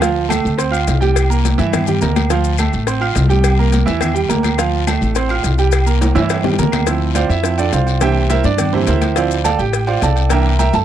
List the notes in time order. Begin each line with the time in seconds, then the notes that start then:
Already playing: D2
0.01 F3 F4 F5, cowbell, high conga, low agogo, long guiro, maracas
0.18 high conga
0.29 A3 A4 A5, cowbell, high conga, low timbale, low agogo, short guiro, claves, maracas
0.44 D2, high conga, short guiro, maracas
0.58 C4 C5 C6, cowbell, high conga, low agogo, long guiro, maracas
0.71 F4 F5 F6, high conga, low agogo, claves, maracas
0.87 C2, cowbell, high conga, low timbale, short guiro, maracas
1.01 G3 G4 G5, high conga, low agogo, short guiro, maracas
1.16 cowbell, high conga, low agogo, long guiro, claves, maracas
1.30 A#3 A#4 A#5, high conga, maracas
1.44 cowbell, high conga, low timbale, low agogo, short guiro, maracas
1.58 G2 E3 E4 E5, high conga, short guiro, maracas
1.73 cowbell, high bongo, high conga, low conga, low agogo, long guiro, claves, maracas
1.87 G3 G4 G5, high bongo, high conga, low conga, maracas
2.01 D2 A#3 A#4 A#5, cowbell, high conga, low timbale, low agogo, short guiro, maracas
2.16 cowbell, low bongo, high conga, low agogo, short guiro, claves, maracas
2.30 F3 F4 F5, cowbell, high conga, low agogo, long guiro, maracas
2.44 high conga, maracas
2.58 A3 A4 A5, cowbell, high conga, low timbale, low agogo, short guiro, claves, maracas
2.73 A1, high conga, short guiro, maracas
2.87 C4 C5 C6, cowbell, high conga, low agogo, long guiro, maracas
3.01 F4 F5 F6, high conga, low agogo, claves
3.15 C2, cowbell, high conga, low timbale, short guiro, maracas
3.29 G3 G4 G5, high conga, low agogo, short guiro, maracas
3.44 cowbell, high conga, low agogo, long guiro, claves, maracas
3.59 A#3 A#4 A#5, high conga
3.72 cowbell, high conga, low timbale, low agogo, short guiro, maracas
3.86 E2 E3 E4 E5, high conga, short guiro, maracas
4.01 cowbell, high conga, low conga, low agogo, long guiro, claves, maracas
4.14 G3 G4 G5, high conga, maracas
4.29 D2 A#3 A#4 A#5, cowbell, high conga, low timbale, low agogo, short guiro, maracas
4.43 cowbell, high conga, low agogo, short guiro, claves, maracas
4.58 F3 F4 F5, cowbell, high conga, low agogo, long guiro, maracas
4.74 high conga
4.87 A3 A4 A5, cowbell, high conga, low timbale, low agogo, short guiro, claves, maracas
5.01 A1, high conga, short guiro, maracas
5.15 C4 C5 C6, cowbell, high conga, low agogo, long guiro, maracas
5.29 F4 F5 F6, high conga, low agogo, claves
5.43 C2, cowbell, high conga, low timbale, short guiro, maracas
5.58 G3 G4 G5, low agogo, short guiro, maracas
5.72 cowbell, high conga, low agogo, long guiro, claves, maracas
5.86 A#3 A#4 A#5, high conga, maracas
6.01 cowbell, high conga, high timbale, low agogo, short guiro, maracas
6.15 G2 E3 E4 E5, high conga, high timbale, short guiro, maracas
6.30 cowbell, high conga, low timbale, low agogo, long guiro, claves, maracas
6.43 G3 G4 G5, high bongo, low conga, low timbale
6.54 high bongo
6.58 D2 A#3 A#4 A#5, cowbell, low conga, low agogo, short guiro, maracas
6.63 low bongo
6.72 cowbell, low bongo, low conga, low timbale, low agogo, short guiro, claves, maracas
6.86 F3 C4 E4, cowbell, low agogo, long guiro, maracas
7.02 high conga
7.15 F4 C5 D5 F5, cowbell, high conga, low timbale, low agogo, short guiro, maracas
7.29 F2 E4 E5, high conga, short guiro, maracas
7.43 F3 C4 E4, cowbell, high conga, low agogo, long guiro, maracas
7.58 D4 F4 A4 D5, high conga, low agogo, maracas
7.72 C2 F4 C5 D5 F5, cowbell, high conga, low timbale, short guiro, maracas
7.87 low agogo, short guiro, maracas
8.01 E3 A#3 D4 G4 C5 E5 G5, cowbell, low agogo, long guiro, maracas
8.16 high conga
8.29 E4 A#4 C5 E5, cowbell, high conga, low timbale, low agogo, short guiro, maracas
8.44 G2 D4 D5, high conga, short guiro, maracas
8.58 cowbell, high conga, low conga, low agogo, long guiro, maracas
8.73 E3 A#3 C4 D4 E4 G4 C5, high conga, low conga
8.87 D2 E4 A#4 C5 E5, cowbell, high conga, low timbale, low agogo, short guiro, maracas
9.01 cowbell, high conga, low agogo, short guiro, maracas
9.16 F3 C4 E4 F4 C5 D5 F5, cowbell, low agogo, long guiro, maracas
9.31 maracas
9.44 A4 D5 F5 A5, cowbell, high conga, low timbale, low agogo, short guiro, maracas
9.59 A1 G4 G5, high conga, short guiro, maracas
9.73 cowbell, high conga, low agogo, long guiro, maracas
9.87 F4 C5 D5 F5, high conga, low agogo
10.02 C2 A4 D5 F5 A5, cowbell, high conga, low timbale, short guiro, maracas
10.16 low agogo, short guiro, maracas
10.30 E3 A#3 D4 A#4 E5 G5 A#5, cowbell, high conga, low agogo, long guiro, maracas
10.46 high conga
10.59 A#4 E5 G5 A#5, cowbell, high conga, low timbale, low agogo, short guiro, maracas
10.73 G2 A4 A5, high conga, short guiro, maracas